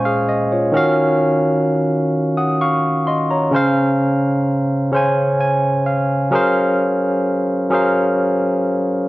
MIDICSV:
0, 0, Header, 1, 2, 480
1, 0, Start_track
1, 0, Key_signature, -5, "major"
1, 0, Tempo, 930233
1, 385, Time_signature, 6, 3, 24, 8
1, 4688, End_track
2, 0, Start_track
2, 0, Title_t, "Tine electric piano"
2, 0, Program_c, 0, 4
2, 0, Control_c, 0, 64, 127
2, 0, Note_on_c, 0, 72, 61
2, 0, Note_on_c, 0, 77, 55
2, 0, Note_on_c, 0, 80, 72
2, 0, Note_on_c, 0, 85, 64
2, 26, Note_off_c, 0, 77, 0
2, 26, Note_on_c, 0, 77, 78
2, 30, Note_on_c, 0, 68, 63
2, 140, Note_off_c, 0, 77, 0
2, 142, Note_off_c, 0, 68, 0
2, 147, Note_on_c, 0, 75, 71
2, 260, Note_off_c, 0, 75, 0
2, 269, Note_on_c, 0, 73, 59
2, 272, Note_on_c, 0, 65, 48
2, 371, Note_on_c, 0, 51, 93
2, 380, Note_on_c, 0, 61, 91
2, 388, Note_on_c, 0, 66, 90
2, 392, Note_off_c, 0, 80, 0
2, 392, Control_c, 0, 64, 0
2, 393, Note_off_c, 0, 72, 0
2, 395, Note_off_c, 0, 85, 0
2, 396, Note_on_c, 0, 77, 106
2, 469, Control_c, 0, 64, 127
2, 495, Note_off_c, 0, 73, 0
2, 497, Note_off_c, 0, 65, 0
2, 885, Note_off_c, 0, 51, 0
2, 889, Note_off_c, 0, 61, 0
2, 893, Note_off_c, 0, 66, 0
2, 897, Note_off_c, 0, 77, 0
2, 1224, Note_on_c, 0, 87, 63
2, 1227, Note_on_c, 0, 78, 54
2, 1339, Note_off_c, 0, 87, 0
2, 1340, Note_off_c, 0, 78, 0
2, 1348, Note_on_c, 0, 85, 78
2, 1351, Note_on_c, 0, 77, 65
2, 1575, Note_off_c, 0, 85, 0
2, 1576, Note_off_c, 0, 77, 0
2, 1585, Note_on_c, 0, 84, 71
2, 1589, Note_on_c, 0, 75, 62
2, 1699, Note_off_c, 0, 84, 0
2, 1701, Note_off_c, 0, 75, 0
2, 1707, Note_on_c, 0, 82, 60
2, 1709, Note_on_c, 0, 73, 52
2, 1812, Note_on_c, 0, 49, 96
2, 1822, Note_on_c, 0, 61, 85
2, 1830, Note_on_c, 0, 72, 91
2, 1831, Control_c, 0, 64, 0
2, 1838, Note_on_c, 0, 77, 106
2, 1918, Control_c, 0, 64, 127
2, 1934, Note_off_c, 0, 82, 0
2, 1935, Note_off_c, 0, 73, 0
2, 2325, Note_off_c, 0, 49, 0
2, 2330, Note_off_c, 0, 61, 0
2, 2334, Note_off_c, 0, 72, 0
2, 2338, Note_off_c, 0, 77, 0
2, 2535, Note_on_c, 0, 49, 76
2, 2542, Note_on_c, 0, 61, 75
2, 2552, Note_on_c, 0, 72, 76
2, 2561, Note_on_c, 0, 80, 85
2, 2783, Note_off_c, 0, 80, 0
2, 2789, Note_on_c, 0, 80, 73
2, 3010, Note_off_c, 0, 80, 0
2, 3025, Note_on_c, 0, 77, 70
2, 3047, Note_off_c, 0, 49, 0
2, 3050, Note_off_c, 0, 61, 0
2, 3055, Note_off_c, 0, 72, 0
2, 3248, Note_off_c, 0, 77, 0
2, 3253, Note_on_c, 0, 54, 89
2, 3257, Note_on_c, 0, 61, 86
2, 3263, Note_on_c, 0, 68, 89
2, 3267, Note_on_c, 0, 70, 85
2, 3272, Control_c, 0, 64, 0
2, 3274, Note_on_c, 0, 72, 86
2, 3278, Note_on_c, 0, 77, 99
2, 3351, Control_c, 0, 64, 127
2, 3766, Note_off_c, 0, 54, 0
2, 3768, Note_off_c, 0, 61, 0
2, 3771, Note_off_c, 0, 68, 0
2, 3773, Note_off_c, 0, 70, 0
2, 3776, Note_off_c, 0, 72, 0
2, 3778, Note_off_c, 0, 77, 0
2, 3971, Note_on_c, 0, 54, 81
2, 3974, Note_on_c, 0, 61, 76
2, 3980, Note_on_c, 0, 68, 75
2, 3985, Note_on_c, 0, 70, 73
2, 3990, Note_on_c, 0, 72, 71
2, 3996, Note_on_c, 0, 77, 87
2, 4485, Note_off_c, 0, 54, 0
2, 4486, Note_off_c, 0, 61, 0
2, 4489, Note_off_c, 0, 68, 0
2, 4492, Note_off_c, 0, 70, 0
2, 4494, Note_off_c, 0, 72, 0
2, 4497, Note_off_c, 0, 77, 0
2, 4688, End_track
0, 0, End_of_file